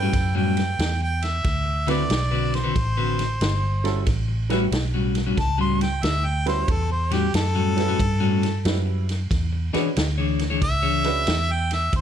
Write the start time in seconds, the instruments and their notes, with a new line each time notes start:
Already playing: fingered electric bass G2, upright piano C#4 E4 G4 A4 B4, harmonica G5
0.02 clean electric guitar A2 G3 C#4 F#4
0.13 fingered electric bass F#2, muted clean electric guitar stroke, kick, snare, ride
0.35 clean electric guitar A2 G3 C#4 F#4, harmonica G5
0.57 snare, ride
0.79 fingered electric bass E2, snare, ride
1.01 harmonica G5, muted clean electric guitar stroke
1.22 harmonica E5, snare, ride
1.44 fingered electric bass D2, kick, snare, ride
1.65 muted clean electric guitar stroke
1.87 clean electric guitar D3 C4 F#4 B4, upright piano A3 C4 E4 F#4 B4, harmonica D5, snare, ride
2.10 fingered electric bass B1, muted clean electric guitar stroke, snare, ride
2.31 clean electric guitar D3 C4 F#4 B4
2.54 harmonica C5, snare, ride
2.64 clean electric guitar D3 C4 F#4 B4
2.75 fingered electric bass A1, muted clean electric guitar stroke, kick, snare, ride
2.97 clean electric guitar D3 C4 F#4 B4
3.19 snare, ride
3.41 fingered electric bass G1, snare, ride
3.62 muted clean electric guitar stroke
3.84 upright piano G3 C#4 E4 F#4 A4, snare, ride
4.07 fingered electric bass A1, kick, snare, ride
4.28 muted clean electric guitar stroke
4.50 clean electric guitar A2 G3 C#4 F#4, upright piano G3 C#4 E4 F#4 B4, snare, ride
4.72 fingered electric bass B1, muted clean electric guitar stroke, snare, ride
4.94 clean electric guitar A2 G3 C#4 F#4
5.15 snare, ride
5.26 clean electric guitar A2 G3 C#4 F#4
5.37 fingered electric bass C#2, harmonica A5, muted clean electric guitar stroke, kick, snare, ride
5.58 clean electric guitar A2 G3 C#4 F#4, harmonica C6
5.81 harmonica G5, snare, ride
6.03 fingered electric bass D2, harmonica E5, snare, ride
6.25 harmonica G5, muted clean electric guitar stroke
6.46 upright piano G3 C#4 E4 F#4 B4, harmonica C5, snare, ride
6.68 fingered electric bass E2, harmonica A4, kick, ride
6.89 harmonica C5, muted clean electric guitar stroke
7.11 clean electric guitar A2 G3 C#4 F#4, harmonica G4, snare, ride
7.33 fingered electric bass F#2, harmonica A4, muted clean electric guitar stroke, snare, ride
7.55 clean electric guitar A2 G3 C#4 F#4
7.77 upright piano G3 C#4 E4 F#4 B4, snare, ride
7.88 clean electric guitar A2 G3 C#4 F#4
7.99 fingered electric bass G2, muted clean electric guitar stroke, kick, ride
8.20 clean electric guitar A2 G3 C#4 F#4
8.43 snare, ride
8.65 fingered electric bass F#2, upright piano G3 C#4 E4 F#4 B4, snare, ride
8.86 muted clean electric guitar stroke
9.09 snare, ride
9.31 fingered electric bass E2, kick, snare, ride
9.53 muted clean electric guitar stroke
9.73 clean electric guitar E3 D4 G#4 C#5, upright piano G#3 C#4 D4 F#4 B4, muted fingered electric bass stroke, snare, ride
9.96 fingered electric bass D2, muted clean electric guitar stroke, snare, ride
10.18 clean electric guitar E3 D4 G#4 C#5
10.39 snare, ride
10.50 clean electric guitar E3 D4 G#4 C#5
10.62 fingered electric bass C#2, harmonica E5, kick, snare, ride
10.82 clean electric guitar E3 D4 G#4 C#5
11.04 upright piano G#3 C#4 D4 F#4 B4, snare, ride
11.27 fingered electric bass E2, snare, ride
11.48 harmonica G5, muted clean electric guitar stroke
11.71 harmonica E5, snare, ride
11.93 fingered electric bass D2, harmonica C5, kick, ride